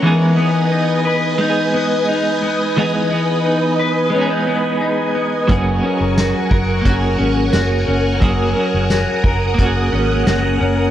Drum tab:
HH |--------|--------|x-x-x-x-|x-x-x-x-|
TB |--------|--------|--x---x-|--x---x-|
SD |--------|--------|--o---o-|--o---o-|
BD |--------|--------|o--oo---|o--oo---|